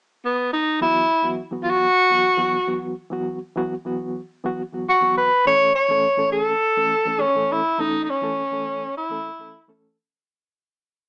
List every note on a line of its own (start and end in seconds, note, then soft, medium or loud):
0.25 0.51 B3 medium
0.53 0.79 D#4 medium
0.81 1.06 E3 medium
0.81 1.06 F#3 medium
0.81 1.06 B3 medium
0.81 1.35 E4 loud
0.81 1.07 F#4 medium
1.23 1.40 E3 medium
1.23 1.40 F#3 medium
1.23 1.41 B3 medium
1.23 1.41 F#4 medium
1.51 1.86 E3 medium
1.51 1.86 F#3 medium
1.51 1.86 B3 medium
1.51 1.87 F#4 medium
1.63 1.72 F4 medium
1.70 2.85 F#4 loud
2.10 2.27 E3 medium
2.10 2.28 F#3 medium
2.10 2.28 B3 medium
2.10 2.28 F#4 medium
2.37 2.56 E3 medium
2.37 2.56 F#3 medium
2.37 2.56 B3 medium
2.37 2.56 F#4 medium
2.67 2.94 E3 medium
2.67 2.93 F#3 medium
2.67 2.94 B3 medium
2.67 2.94 F#4 medium
3.10 3.37 E3 medium
3.10 3.37 F#3 medium
3.10 3.38 B3 medium
3.10 3.38 F#4 medium
3.56 3.73 E3 medium
3.56 3.73 F#3 medium
3.56 3.74 B3 medium
3.56 3.74 F#4 loud
3.85 4.19 E3 medium
3.85 4.19 F#3 medium
3.85 4.20 B3 medium
3.85 4.20 F#4 medium
4.44 4.61 E3 medium
4.44 4.61 F#3 medium
4.44 4.61 B3 medium
4.44 4.62 F#4 loud
4.72 4.89 E3 medium
4.72 4.90 F#3 medium
4.72 4.90 B3 medium
4.72 4.90 F#4 medium
4.89 5.15 F#4 medium
5.01 5.27 E3 medium
5.01 5.27 F#3 medium
5.01 5.28 B3 medium
5.01 5.28 F#4 medium
5.17 5.44 B4 medium
5.45 5.71 E3 medium
5.45 5.71 A3 medium
5.45 5.72 C#4 medium
5.45 5.72 A4 medium
5.45 5.73 C#5 loud
5.75 6.29 C#5 loud
5.88 6.06 E3 medium
5.88 6.07 A3 medium
5.88 6.07 C#4 medium
5.88 6.07 A4 medium
6.17 6.52 E3 medium
6.17 6.52 A3 medium
6.17 6.52 C#4 medium
6.17 6.53 A4 medium
6.32 7.22 A4 loud
6.77 6.94 E3 medium
6.77 6.94 A3 medium
6.77 6.94 C#4 medium
6.77 6.95 A4 medium
7.05 7.23 E3 medium
7.05 7.23 A3 medium
7.05 7.24 C#4 medium
7.05 7.24 A4 medium
7.21 7.53 C#4 medium
7.35 7.61 E3 medium
7.35 7.61 A3 medium
7.35 7.61 C#4 medium
7.35 7.62 A4 medium
7.52 7.82 E4 medium
7.78 8.05 E3 medium
7.78 8.05 A3 medium
7.78 8.05 C#4 medium
7.78 8.04 D#4 medium
7.78 8.06 A4 medium
8.04 8.11 D#4 medium
8.10 8.97 C#4 medium
8.22 8.40 E3 medium
8.22 8.40 A3 medium
8.22 8.40 C#4 medium
8.22 8.41 A4 medium
8.51 8.86 E3 medium
8.51 8.87 A3 medium
8.51 8.87 C#4 medium
8.51 8.87 A4 medium
8.98 9.81 E4 medium
9.10 9.28 E3 medium
9.10 9.28 A3 medium
9.10 9.28 C#4 medium
9.10 9.29 A4 medium
9.39 9.57 E3 medium
9.39 9.57 A3 medium
9.39 9.58 C#4 medium
9.39 9.58 A4 medium
9.68 9.95 E3 medium
9.68 9.95 A3 medium
9.68 9.95 C#4 medium
9.68 9.95 A4 medium